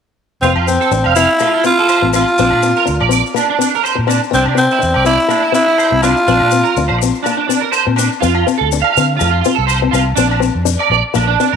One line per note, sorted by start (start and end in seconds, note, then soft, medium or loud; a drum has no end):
0.42 0.54 F1 medium
0.42 0.53 C4 medium
0.42 0.65 C4 medium
0.42 0.54 F4 medium
0.42 maracas medium
0.56 0.77 F2 medium
0.56 0.66 F4 medium
0.56 low agogo medium
0.67 1.13 C4 medium
0.67 0.89 C4 medium
0.67 maracas medium
0.81 0.90 A4 medium
0.81 maracas soft
0.91 1.03 A1 medium
0.91 1.13 D4 medium
0.91 maracas medium
1.04 1.25 F1 medium
1.04 1.15 F5 medium
1.04 low agogo medium
1.16 1.37 C4 medium
1.16 1.61 E4 medium
1.16 1.28 F5 medium
1.16 maracas medium
1.30 maracas soft
1.39 1.62 A3 medium
1.39 1.52 F4 medium
1.39 low agogo medium
1.39 maracas medium
1.54 1.63 F4 medium
1.64 1.86 C4 medium
1.64 2.11 F4 medium
1.64 1.77 F4 medium
1.64 maracas medium
1.78 1.88 A4 medium
1.78 maracas soft
1.89 2.00 C5 medium
1.89 low agogo medium
1.89 maracas medium
2.02 2.23 A1 medium
2.02 2.12 C4 medium
2.13 2.35 C4 medium
2.13 2.25 F4 medium
2.13 3.08 F4 medium
2.13 low agogo medium
2.13 maracas medium
2.28 maracas soft
2.38 2.50 A#1 medium
2.38 2.60 C4 medium
2.38 2.50 D4 medium
2.38 maracas medium
2.50 2.72 A#2 medium
2.50 2.61 D4 medium
2.50 low agogo medium
2.63 2.84 C4 medium
2.63 maracas medium
2.76 2.86 A#4 medium
2.76 maracas soft
2.85 2.99 D2 medium
2.85 3.07 D4 medium
2.85 maracas medium
3.01 3.21 A#1 medium
3.01 3.10 D5 medium
3.01 low agogo medium
3.09 3.31 C4 medium
3.09 3.23 D5 medium
3.09 maracas medium
3.26 maracas soft
3.34 3.56 A#3 medium
3.34 3.48 D4 medium
3.34 low agogo medium
3.34 maracas medium
3.50 3.59 D4 medium
3.59 3.80 C4 medium
3.59 3.72 D4 medium
3.59 maracas medium
3.75 3.83 A#4 medium
3.75 maracas soft
3.83 3.95 C5 medium
3.83 low agogo medium
3.83 maracas medium
3.95 4.19 A#2 medium
3.95 muted steel-string acoustic guitar stroke medium
4.07 4.29 C4 medium
4.07 4.20 D4 medium
4.07 low agogo medium
4.07 maracas medium
4.24 maracas soft
4.31 4.44 C2 medium
4.31 4.53 C4 medium
4.31 4.45 C4 medium
4.31 4.45 D4 medium
4.31 maracas medium
4.46 4.67 C3 medium
4.46 4.57 D4 medium
4.46 low agogo medium
4.55 4.77 C4 medium
4.55 5.03 C4 medium
4.55 maracas medium
4.71 4.81 E4 medium
4.71 maracas soft
4.79 4.94 E2 medium
4.79 5.01 D4 medium
4.79 maracas medium
4.94 5.16 C2 medium
4.94 5.05 D5 medium
4.94 low agogo medium
5.05 5.27 C4 medium
5.05 5.51 E4 medium
5.05 5.18 D5 medium
5.05 maracas medium
5.20 maracas soft
5.28 5.51 A#3 medium
5.28 5.42 D4 medium
5.28 low agogo medium
5.28 maracas medium
5.42 5.52 E4 medium
5.52 5.75 C4 medium
5.52 5.66 D4 medium
5.52 6.00 E4 medium
5.52 maracas medium
5.67 5.77 E4 medium
5.67 maracas soft
5.78 5.90 C5 medium
5.78 low agogo medium
5.78 maracas medium
5.91 6.13 C2 medium
5.91 6.02 C4 medium
6.02 6.25 C4 medium
6.02 6.15 D4 medium
6.02 6.97 F4 medium
6.02 low agogo medium
6.02 maracas medium
6.17 maracas soft
6.27 6.39 A#1 medium
6.27 6.49 C4 medium
6.27 6.38 D4 medium
6.27 maracas medium
6.40 6.62 A#2 medium
6.40 6.50 D4 medium
6.40 low agogo medium
6.51 6.74 C4 medium
6.51 maracas medium
6.64 6.74 A#4 medium
6.64 maracas soft
6.76 6.88 D2 medium
6.76 6.98 D4 medium
6.76 maracas medium
6.88 7.11 A#1 medium
6.88 6.98 C5 medium
6.88 low agogo medium
6.98 muted clean electric guitar stroke medium
6.98 maracas medium
7.03 7.23 C4 medium
7.15 maracas soft
7.23 7.47 A#3 medium
7.23 7.35 D4 medium
7.23 low agogo medium
7.23 maracas medium
7.37 7.46 D4 medium
7.48 7.71 C4 medium
7.48 7.60 D4 medium
7.48 maracas medium
7.61 7.71 A#4 medium
7.72 7.84 C5 medium
7.72 low agogo medium
7.72 maracas medium
7.87 8.08 A#2 medium
7.87 7.97 C4 medium
7.96 8.20 C4 medium
7.96 8.09 D4 medium
7.96 low agogo medium
7.96 maracas medium
8.12 maracas soft
8.21 8.43 F2 loud
8.21 8.44 C4 medium
8.21 8.33 F4 medium
8.21 maracas medium
8.35 8.45 F4 medium
8.35 low agogo medium
8.47 8.68 C4 medium
8.47 maracas medium
8.58 8.81 D2 medium
8.58 8.68 A4 medium
8.72 8.93 D4 medium
8.72 maracas medium
8.82 8.92 F5 medium
8.82 low agogo medium
8.93 9.05 F5 medium
8.97 9.17 D3 medium
8.97 9.18 C4 medium
8.97 maracas medium
9.17 9.29 F4 medium
9.17 low agogo medium
9.17 maracas medium
9.21 9.41 F2 loud
9.21 9.42 A3 medium
9.31 9.40 F4 medium
9.41 9.54 F4 medium
9.41 maracas medium
9.46 9.66 C4 medium
9.55 9.88 C2 medium
9.55 9.66 A4 medium
9.67 9.79 C5 medium
9.67 low agogo medium
9.67 maracas medium
9.82 9.92 C4 medium
9.91 10.14 C2 medium
9.91 10.15 C4 medium
9.91 10.03 F4 medium
9.91 low agogo medium
9.91 maracas medium
10.16 10.49 A#1 loud
10.16 10.39 C4 medium
10.16 10.28 D4 medium
10.16 maracas medium
10.29 10.39 D4 medium
10.29 low agogo medium
10.40 10.62 C4 medium
10.40 maracas medium
10.55 10.75 F2 medium
10.65 10.87 D4 medium
10.65 maracas medium
10.79 10.89 D5 medium
10.79 low agogo medium
10.90 11.01 A#1 medium
10.90 11.02 D5 medium
10.90 muted steel-string acoustic guitar stroke medium
11.14 11.35 A#1 medium
11.14 11.35 A#3 medium
11.14 11.26 D4 medium
11.14 low agogo medium
11.14 maracas medium
11.27 11.37 D4 medium
11.40 11.56 C4 medium
11.40 11.51 D4 medium
11.40 maracas medium
11.53 11.56 A#4 medium